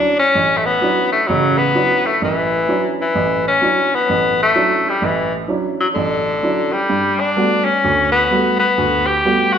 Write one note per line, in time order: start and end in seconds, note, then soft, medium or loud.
0.00 0.20 F#3 soft
0.00 0.20 C#4 soft
0.00 0.17 D4 medium
0.00 0.20 D4 soft
0.00 0.20 E4 soft
0.20 0.59 C#4 medium
0.35 0.75 A1 medium
0.57 0.67 A3 medium
0.66 1.12 B3 medium
0.81 1.13 F#3 soft
0.81 1.14 C#4 soft
0.81 1.14 D4 soft
0.81 1.14 E4 soft
1.12 1.29 A3 medium
1.27 1.69 A1 medium
1.27 1.69 C#3 medium
1.27 1.60 F#3 medium
1.58 2.07 B3 medium
1.75 2.07 F#3 soft
1.75 2.07 C#4 soft
1.75 2.07 D4 soft
1.75 2.07 E4 soft
2.06 2.21 A3 medium
2.21 2.62 A1 medium
2.21 2.96 E3 medium
2.68 3.00 F#3 soft
2.68 3.01 C#4 soft
2.68 3.01 D4 soft
2.68 3.00 E4 medium
3.02 3.44 E3 medium
3.15 3.55 A1 medium
3.48 3.97 C#4 medium
3.61 3.94 F#3 soft
3.61 3.94 C#4 soft
3.61 3.94 D4 soft
3.61 3.94 E4 soft
3.95 4.40 B3 medium
4.09 4.49 A1 medium
4.43 4.91 A3 medium
4.55 4.87 F#3 soft
4.55 4.88 C#4 soft
4.55 4.88 D4 soft
4.55 4.88 E4 soft
4.90 5.06 G3 medium
5.01 5.42 A1 medium
5.01 5.34 E3 medium
5.48 5.81 F#3 soft
5.48 5.81 C#4 soft
5.48 5.81 D4 soft
5.48 5.81 E4 soft
5.80 5.87 F#3 medium
5.95 6.36 A1 medium
5.95 6.74 D3 medium
6.43 6.75 F#3 soft
6.43 6.75 C#4 soft
6.43 6.75 D4 soft
6.43 6.75 E4 medium
6.73 7.22 G3 medium
6.90 7.30 G2 medium
7.20 7.66 D4 medium
7.36 7.68 G3 soft
7.36 7.69 A3 soft
7.36 7.69 B3 soft
7.36 7.69 F#4 soft
7.65 8.11 C#4 medium
7.84 8.24 D2 medium
8.12 8.56 B3 medium
8.31 8.63 G3 soft
8.31 8.63 A3 soft
8.31 8.63 B3 soft
8.31 8.63 F#4 medium
8.60 9.08 B3 medium
8.78 9.18 D2 medium
9.07 9.55 G4 medium
9.25 9.57 G3 soft
9.25 9.57 A3 soft
9.25 9.57 B3 soft
9.25 9.57 F#4 medium
9.53 9.58 F#4 medium